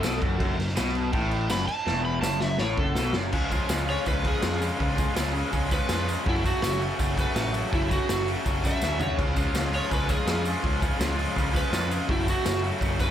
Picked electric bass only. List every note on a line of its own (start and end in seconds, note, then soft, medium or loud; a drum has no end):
0.02 0.20 B1 loud
0.22 0.39 F#1 loud
0.40 0.57 F#1 loud
0.59 0.76 F#1 medium
0.77 1.11 B1 medium
1.14 1.48 A1 loud
1.50 1.67 F#1 loud
1.69 muted picked electric bass stroke soft
1.87 2.21 E1 medium
2.22 2.57 F#1 loud
2.59 2.77 A1 loud
2.77 2.95 F#1 loud
2.96 3.13 B1 loud
3.14 3.32 F#1 loud
3.33 3.57 C#2 medium
3.70 3.94 C#2 medium
4.06 4.30 C#2 loud
4.44 4.67 F2 medium
4.80 5.04 C#2 loud
5.16 5.40 C#2 medium
5.53 5.77 C#2 medium
5.90 6.14 F2 loud
6.26 6.50 F#1 medium
6.63 6.87 F#1 loud
6.99 7.23 F#1 loud
7.36 7.60 A1 medium
7.72 7.96 F#1 loud
8.10 8.34 F#1 medium
8.46 8.70 F#1 medium
8.82 9.06 D2 loud
9.19 9.43 C#2 medium
9.54 9.78 C#2 medium
9.91 10.15 C#2 medium
10.28 10.52 F2 medium
10.64 10.88 C#2 loud
10.99 11.24 C#2 medium
11.36 11.60 C#2 medium
11.73 11.97 F2 loud
12.09 12.33 F#1 loud
12.46 12.70 F#1 medium
12.81 13.05 F#1 medium